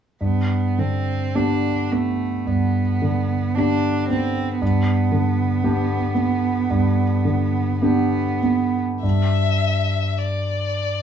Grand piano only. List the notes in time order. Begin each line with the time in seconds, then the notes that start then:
0.21 G2
0.78 D3
1.35 B3 D4 G4
1.92 B3
2.47 G2
3.02 D3
3.57 B3 D4 G4
4.10 B3
4.62 G2
5.12 D3
5.64 B3 D4 G4
6.15 B3
6.70 G2
7.25 D3
7.82 B3 D4 G4
8.43 B3
9.03 G2